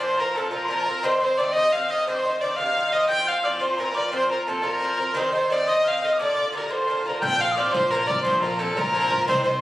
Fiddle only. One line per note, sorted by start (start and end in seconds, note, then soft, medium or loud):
0.00 0.22 C5 loud
0.20 0.38 A#4 medium
0.36 0.52 A4 medium
0.52 1.06 A#4 medium
1.05 1.22 C5 loud
1.22 1.39 C5 loud
1.38 1.54 D5 medium
1.53 1.74 D#5 loud
1.72 1.92 F5 loud
1.90 2.07 D#5 medium
2.08 2.43 C5 loud
2.41 2.58 D5 medium
2.56 2.94 F5 loud
2.92 3.09 D#5 medium
3.09 3.30 G5 loud
3.28 3.46 F5 loud
3.45 3.62 D5 medium
3.60 3.81 C5 medium
3.79 3.98 A#4 medium
3.96 4.13 D5 medium
4.14 4.30 C5 loud
4.31 4.47 A#4 medium
4.49 4.67 A4 medium
4.66 5.18 A#4 medium
5.16 5.34 C5 loud
5.34 5.54 C5 medium
5.52 5.70 D5 medium
5.69 5.89 D#5 loud
5.88 6.06 F5 medium
6.04 6.20 D#5 medium
6.21 6.53 D5 loud
6.57 6.72 A#4 medium
6.71 7.10 C5 medium
7.09 7.22 A#4 medium
7.23 7.42 G5 loud
7.40 7.59 F5 medium
7.58 7.75 D5 medium
7.73 7.92 C5 loud
7.91 8.09 A#4 loud
8.08 8.23 D5 medium
8.23 8.37 C5 loud
8.37 8.44 C5 medium
8.42 8.61 A#4 medium
8.59 8.78 A4 medium
8.77 9.27 A#4 loud
9.27 9.43 C5 loud
9.44 9.60 C5 medium